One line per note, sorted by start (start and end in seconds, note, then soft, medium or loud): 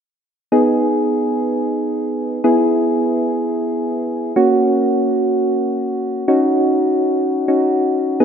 0.52 2.40 B3 medium
0.52 2.40 D#4 medium
0.52 2.40 G#4 medium
2.44 4.32 B3 medium
2.44 4.32 E4 medium
2.44 4.32 G#4 medium
4.36 6.24 A#3 medium
4.36 6.24 C#4 medium
4.36 6.24 F#4 medium
6.28 7.46 C#4 medium
6.28 7.46 D#4 medium
6.28 7.46 F#4 medium
7.48 8.20 C#4 medium
7.48 8.19 D#4 soft
7.48 8.20 F#4 medium
8.20 8.25 B3 medium
8.20 8.25 D#4 medium
8.20 8.25 G#4 medium